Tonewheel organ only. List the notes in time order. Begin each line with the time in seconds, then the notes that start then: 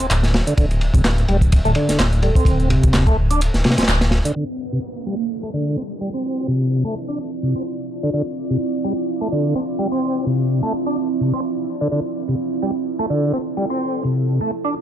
0.47 D3
0.57 D3
0.94 C3
1.28 G3
1.65 A3
1.76 D3
1.99 C4
2.23 G3
2.36 C4
2.70 C3
3.07 A3
3.31 D4
3.65 C3
3.78 C4
4.25 D3
4.36 D3
4.72 C3
5.06 G3
5.43 A3
5.54 D3
5.77 C4
6.01 G3
6.14 C4
6.48 C3
6.85 A3
7.08 D4
7.43 C3
7.56 C4
8.03 D3
8.14 D3
8.50 C3
8.85 G3
9.21 A3
9.32 D3
9.55 C4
9.79 G3
9.92 C4
10.26 C3
10.63 A3
10.86 D4
11.21 C3
11.34 C4
11.81 D3
11.92 D3
12.28 C3
12.63 G3
12.99 A3
13.10 D3
13.33 C4
13.57 G3
13.70 C4
14.04 C3
14.41 A3
14.65 D4